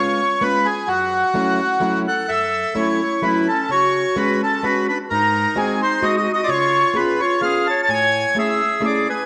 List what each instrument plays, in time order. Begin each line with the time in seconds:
Already playing: steel-string acoustic guitar G#3 B3 C#4 F4, accordion C#5
0.41 steel-string acoustic guitar G#3 B3 C#4 F4, accordion B4
0.65 accordion G#4
0.87 steel-string acoustic guitar F#2, accordion F#4
1.34 steel-string acoustic guitar F#3 A3 C#4 E4
1.80 steel-string acoustic guitar F#3 A3 C#4 E4
2.07 clarinet A4, accordion F#5
2.28 steel-string acoustic guitar F#2, clarinet A4, accordion E5
2.75 steel-string acoustic guitar F#3 A3 C#4 E4, clarinet E4, accordion C#5
3.22 steel-string acoustic guitar F#3 A3 C#4 E4, clarinet E4, accordion B4
3.48 clarinet C#4, accordion A4
3.69 steel-string acoustic guitar C#3, clarinet F#4, accordion C#5
4.16 steel-string acoustic guitar G#3 B3 C#4 F#4, clarinet F#4, accordion B4
4.43 clarinet C#4, accordion A4
4.63 steel-string acoustic guitar G#3 B3 C#4 F#4, clarinet F#4, accordion B4
4.88 clarinet D4, accordion B4
5.10 steel-string acoustic guitar G#2, clarinet D#4, accordion A#4
5.55 steel-string acoustic guitar G#3 C4 D#4 F#4, clarinet C4, accordion G#4
5.81 clarinet D#4, accordion C5
6.02 steel-string acoustic guitar G#3 C4 D#4 F#4, clarinet F#4, accordion D#5
6.17 clarinet F#4, accordion D#5
6.33 clarinet F#4, accordion D#5
6.43 clarinet F4, accordion D5
6.48 steel-string acoustic guitar C#3, clarinet F4, accordion C#5
6.94 steel-string acoustic guitar B3 C#4 F4 G#4, accordion B4
6.98 clarinet F4
7.20 clarinet F4, accordion C#5
7.41 steel-string acoustic guitar B3 C#4 F4 G#4, clarinet G#4, accordion F5
7.67 clarinet C#5, accordion A5
7.82 clarinet C#5, accordion A5
7.88 steel-string acoustic guitar A2, accordion G#5
7.93 clarinet C#5
8.35 steel-string acoustic guitar A3 C#4 E4 G#4, clarinet G#4
8.39 accordion E5
8.80 steel-string acoustic guitar A3 C#4 E4 G#4
8.85 clarinet G#4, accordion D5
9.09 clarinet B4, accordion G#5